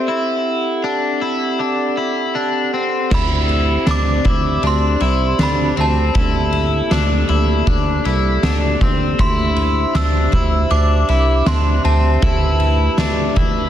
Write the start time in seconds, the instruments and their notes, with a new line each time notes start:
Already playing: glass harmonica C4 G4 A4
0.08 clean electric guitar E4, glass harmonica F#5
0.84 clean electric guitar D4
1.21 clean electric guitar E4
1.59 clean electric guitar D4
1.97 clean electric guitar E4
2.35 clean electric guitar D4
2.73 clean electric guitar C4
3.11 analog synth bass D2, glass harmonica C4 G4 C5 D5, clean electric guitar E4, synth bell B5, kick, crash
3.49 ride
3.87 analog synth bass D2, clean electric guitar D4, snare, ride, tambourine
3.91 synth bell D6
4.25 analog synth bass D2, clean electric guitar E4, kick, ride
4.63 analog synth bass D2, clean electric guitar D4, ride
4.67 synth bell C6
5.00 analog synth bass C2, clean electric guitar E4, ride
5.39 analog synth bass D2, clean electric guitar D4, synth bell B5, snare, ride, tambourine
5.77 analog synth bass D2, clean electric guitar C4, synth bell A5, ride
6.15 analog synth bass D2, glass harmonica A#3 A4, clean electric guitar E4, kick, ride
6.53 ride
6.91 analog synth bass D2, clean electric guitar D4, snare, ride, tambourine
7.29 analog synth bass D2, clean electric guitar E4, ride
7.67 analog synth bass D2, clean electric guitar D4, kick, ride
8.05 analog synth bass C2, clean electric guitar E4, ride
8.43 analog synth bass D2, clean electric guitar D4, snare, ride, tambourine
8.81 analog synth bass D2, clean electric guitar C4, kick, ride
9.19 analog synth bass D2, glass harmonica D4 C5 E5, clean electric guitar E4, synth bell C6, kick, ride
9.56 ride
9.95 analog synth bass D2, clean electric guitar D4, synth bell E6, snare, ride, tambourine
10.32 analog synth bass D2, clean electric guitar E4, kick, ride
10.70 analog synth bass D2, clean electric guitar D4, synth bell D6, ride
11.09 analog synth bass C2, clean electric guitar E4, ride
11.46 analog synth bass D2, clean electric guitar D4, synth bell C6, snare, ride, tambourine
11.85 analog synth bass D2, clean electric guitar C4, synth bell A5, ride
12.22 analog synth bass D2, glass harmonica A3 B4, clean electric guitar E4, kick, ride
12.60 ride
12.98 analog synth bass D2, clean electric guitar D4, snare, ride, tambourine
13.36 analog synth bass D2, clean electric guitar E4, kick, ride